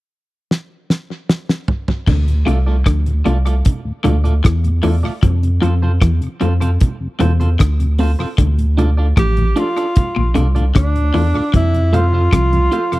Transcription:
0.51 snare
0.90 snare
1.29 snare
1.49 snare
1.68 floor tom
1.88 floor tom
2.07 sub bass D2, clean electric guitar D3, kick, crash, low conga
2.27 tonewheel organ D2 A2, closed hi-hat
2.46 sub bass C2, clean electric guitar C3 A3 F4 A4 D5, tonewheel organ A3 D4 F4, closed hi-hat
2.66 clean electric guitar A3 F4 A4 D5
2.86 sub bass D2, clean electric guitar D3, kick, cross-stick, closed hi-hat, high conga
3.06 tonewheel organ D2 A2, closed hi-hat
3.25 sub bass C2, clean electric guitar C3 A3 F4 A4 D5, tonewheel organ A3 D4 F4, closed hi-hat
3.45 clean electric guitar A3 F4 A4 D5, closed hi-hat
3.65 kick, closed hi-hat, low conga
3.85 tonewheel organ D2 A2
4.04 sub bass D2, clean electric guitar D3 A3 F4 A4 D5, tonewheel organ A3 D4 F4, closed hi-hat, low conga
4.24 tonewheel organ D2 A2, clean electric guitar A3 F4 A4 D5, closed hi-hat
4.44 sub bass E2, clean electric guitar E3, kick, cross-stick, closed hi-hat
4.64 tonewheel organ D2 A2, closed hi-hat
4.83 sub bass E2, clean electric guitar E3 A3 F4 A4 D5, tonewheel organ A3 D4 F4, open hi-hat
5.03 tonewheel organ D2 A2, clean electric guitar A3 F4 A4 D5
5.23 sub bass F2, clean electric guitar F3, kick, closed hi-hat, low conga
5.43 tonewheel organ F2 C3, closed hi-hat
5.61 sub bass F2, clean electric guitar F3 C4 F4 A4 C5, tonewheel organ A3 C4 F4, closed hi-hat
5.82 tonewheel organ F2 C3, clean electric guitar C4 F4 A4 C5
6.02 sub bass E2, clean electric guitar E3, kick, cross-stick, closed hi-hat, high conga
6.21 tonewheel organ F2 C3, closed hi-hat
6.40 sub bass F2, clean electric guitar F3 C4 F4 A4 C5, tonewheel organ A3 C4 F4, closed hi-hat
6.60 tonewheel organ F2 C3, clean electric guitar C4 F4 A4 C5, closed hi-hat
6.80 kick, closed hi-hat, low conga
7.00 tonewheel organ F2 C3
7.19 sub bass E2, clean electric guitar E3 C4 F4 A4 C5, tonewheel organ A3 C4 F4, closed hi-hat, low conga
7.40 tonewheel organ F2 C3, clean electric guitar C4 F4 A4 C5, closed hi-hat
7.59 sub bass D2, clean electric guitar D3, kick, cross-stick, closed hi-hat
7.79 tonewheel organ F2 C3, closed hi-hat
7.98 tonewheel organ A3 C4 F4, clean electric guitar C4 F4 A4 C5, open hi-hat
8.19 tonewheel organ F2 C3, clean electric guitar C4 F4 A4 C5
8.38 sub bass D2, clean electric guitar D3, kick, closed hi-hat, low conga
8.58 tonewheel organ D2 A2, closed hi-hat
8.77 tonewheel organ A3 D4 F4, clean electric guitar D4 F4 A4 D5, closed hi-hat, low conga
8.97 clean electric guitar D4 F4 A4 D5
9.17 sub bass A1, clean electric guitar A2, tenor saxophone G4, kick, cross-stick, closed hi-hat, high conga
9.37 tonewheel organ D2 A2, closed hi-hat, high conga
9.56 tonewheel organ A3 D4 F4, clean electric guitar D4 F4 A4 D5, tenor saxophone F4, closed hi-hat
9.77 clean electric guitar D4 F4 A4 D5, closed hi-hat
9.96 kick, closed hi-hat, low conga
10.16 sub bass A#1, tonewheel organ D2 A2, clean electric guitar A#2
10.34 sub bass C2, clean electric guitar C3 D4 F4 A4 D5, tonewheel organ A3 D4 F4, closed hi-hat, low conga
10.55 tonewheel organ D2 A2, clean electric guitar D4 F4 A4 D5, closed hi-hat
10.75 sub bass D2, clean electric guitar D3, tenor saxophone D4, kick, cross-stick, closed hi-hat
10.94 tonewheel organ D2 A2, closed hi-hat
11.14 sub bass E2, clean electric guitar E3 D4 F4 A4 D5, tonewheel organ A3 D4 F4, open hi-hat
11.34 tonewheel organ D2 A2, clean electric guitar D4 F4 A4 D5
11.54 sub bass F2, clean electric guitar F3, tenor saxophone E4, kick, closed hi-hat, low conga
11.74 tonewheel organ F2 C3, closed hi-hat
11.93 tonewheel organ A3 C4 F4, clean electric guitar F4 A4 C5 F5, tenor saxophone F4, closed hi-hat, low conga
12.13 tonewheel organ F2 C3, clean electric guitar F4 A4 C5 F5
12.33 sub bass C2, clean electric guitar C3, kick, cross-stick, closed hi-hat, high conga
12.52 tonewheel organ F2 C3, closed hi-hat, high conga
12.72 tonewheel organ A3 C4 F4, clean electric guitar F4 A4 C5 F5, closed hi-hat
12.92 tonewheel organ F2 C3, clean electric guitar F4 A4 C5 F5, closed hi-hat

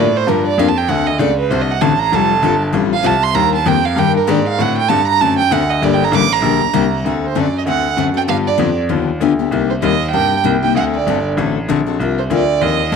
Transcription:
Already playing: grand piano A2
0.00 violin D5
0.17 violin C5
0.27 grand piano G2, steel-string acoustic guitar D3 F3 A#3 D4 G4, violin A#4
0.47 violin D5
0.58 grand piano F2, steel-string acoustic guitar D3 F3 A#3 D4 G4, violin F5
0.69 violin A5
0.78 violin G5
0.88 grand piano D2, steel-string acoustic guitar D3 A3 C4 F#4 A4, violin F#5
1.07 violin D#5
1.19 grand piano C#2, steel-string acoustic guitar D3 A3 C4 F#4 A4, violin D5
1.39 violin B4
1.50 grand piano C2, steel-string acoustic guitar D3 A3 C4 F#4 A4, violin C5
1.62 violin D#5
1.72 violin F#5
1.81 grand piano A1, steel-string acoustic guitar D3 A3 C4 F#4 A4, violin A5
1.99 violin A#5
2.12 grand piano F1, steel-string acoustic guitar F3 G3 C4 F4 A4, violin A5
2.42 grand piano G1, steel-string acoustic guitar F3 G3 C4 F4 A4
2.72 grand piano A1, steel-string acoustic guitar F3 G3 C4 F4 A4
2.94 violin F5
3.03 grand piano C2, steel-string acoustic guitar F3 G3 C4 F4 A4, violin A5
3.23 violin C6
3.34 grand piano D#2, steel-string acoustic guitar D#3 G3 A#3 D4 G4, violin A#5
3.55 violin A5
3.66 grand piano F2, steel-string acoustic guitar D#3 G3 A#3 D4 G4, violin G5
3.85 violin F5
3.96 grand piano G2, steel-string acoustic guitar D#3 G3 A#3 D4 G4, violin G5
4.17 violin A#4
4.27 grand piano G#2, steel-string acoustic guitar D#3 G3 A#3 D4 G4, violin D5
4.48 violin F5
4.58 grand piano A2, steel-string acoustic guitar D3 A3 C4 F#4 A4, violin F#5
4.78 violin G5
4.89 grand piano G2, steel-string acoustic guitar D3 A3 C4 F#4 A4, violin A5
5.08 violin A#5
5.21 grand piano F#2, steel-string acoustic guitar D3 A3 C4 F#4 A4, violin A5
5.39 violin G5
5.51 grand piano D2, steel-string acoustic guitar D3 A3 C4 F#4 A4, violin F#5
5.70 violin D#5
5.82 grand piano G1, steel-string acoustic guitar D3 G3 A#3 D4 G4, violin D5
5.94 violin G5
6.05 violin A#5
6.12 grand piano A1, steel-string acoustic guitar D3 G3 A#3 D4 G4, violin D6
6.33 violin A#5
6.42 grand piano A#1, steel-string acoustic guitar D3 G3 A#3 D4 G4
6.61 grand piano A#1
6.73 grand piano C2, steel-string acoustic guitar D3 G3 A#3 D4 G4
7.05 grand piano D2, steel-string acoustic guitar D3 A3 C4 F#4 A4
7.27 violin C5
7.35 grand piano F#2, steel-string acoustic guitar D3 A3 C4 F#4 A4
7.39 violin D5
7.58 violin D#5
7.66 grand piano D2, steel-string acoustic guitar D3 A3 C4 F#4 A4, violin F#5
7.97 grand piano F#2, steel-string acoustic guitar D3 A3 C4 F#4 A4
8.14 steel-string acoustic guitar C4 F#4 A4, violin G5
8.28 grand piano G2, steel-string acoustic guitar D3 F3 B3 D4 G4, violin F5
8.47 violin D5
8.58 grand piano F2, steel-string acoustic guitar D3 F3 B3 D4 G4
8.89 grand piano D#2, steel-string acoustic guitar D3 F3 B3 D4 G4
9.20 grand piano D2, steel-string acoustic guitar D3 F3 B3 D4 G4
9.39 steel-string acoustic guitar B3 D4 G4
9.51 grand piano C2, steel-string acoustic guitar C3 G3 A#3 D#4 G4
9.70 violin C5
9.82 grand piano D#2, steel-string acoustic guitar C3 G3 A#3 D#4 G4, violin D#5
10.12 grand piano G2, steel-string acoustic guitar C3 G3 A#3 D#4 G4, violin G5
10.44 grand piano C2, steel-string acoustic guitar C3 G3 A#3 D#4 G4
10.62 steel-string acoustic guitar A#3 D#4 G4, violin G5
10.75 grand piano D2, steel-string acoustic guitar D3 A3 C4 F#4 A4, violin F#5
10.95 violin D5
11.06 grand piano G1, steel-string acoustic guitar D3 A3 C4 F#4 A4
11.37 grand piano A1, steel-string acoustic guitar D3 A3 C4 F#4 A4
11.69 grand piano A#1, steel-string acoustic guitar D3 A3 C4 F#4 A4
11.86 steel-string acoustic guitar C4 F#4 A4
11.99 grand piano C2, steel-string acoustic guitar F3 C4 F4 A#4
12.18 violin C5
12.30 grand piano D2, steel-string acoustic guitar F3 C4 F4 A#4, violin D5
12.61 grand piano D#2, steel-string acoustic guitar F3 C4 F4 A#4, violin D#5
12.92 grand piano F2, steel-string acoustic guitar F3

